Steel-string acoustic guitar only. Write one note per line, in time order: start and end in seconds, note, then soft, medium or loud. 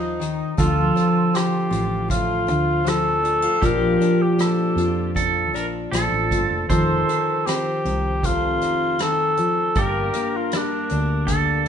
0.00 0.18 D#3 medium
0.00 0.19 F3 medium
0.00 0.53 C4 soft
0.00 0.54 D#4 medium
0.20 0.57 D#3 medium
0.57 3.57 D3 medium
0.57 1.70 F4 medium
0.96 2.46 C4 medium
1.34 2.84 F3 medium
1.71 3.23 F4 medium
2.09 3.57 A2 medium
2.47 3.57 C4 soft
2.84 3.61 F3 medium
3.23 3.42 D4 medium
3.42 3.62 F4 soft
3.61 5.13 A#2 medium
3.61 4.38 F3 medium
3.61 3.99 D4 medium
3.61 4.77 F4 medium
4.01 5.53 D4 medium
4.38 5.91 F3 medium
4.77 6.31 F4 medium
5.15 6.64 A#2 medium
5.54 6.64 D4 medium
5.92 6.68 F3 medium
6.32 6.65 F4 medium
6.70 9.36 F3 medium
6.70 7.07 D#4 medium
7.08 7.84 D#4 medium
7.46 9.72 C4 medium
7.86 8.62 D#4 soft
8.24 9.00 C3 medium
8.63 9.72 D#4 soft
9.00 9.38 D#3 medium
9.38 9.76 F3 medium
9.76 11.68 G2 medium
9.76 10.91 D4 medium
10.15 11.66 A#3 medium
10.53 11.68 G3 soft
10.92 11.68 D4 soft
11.27 11.68 D3 medium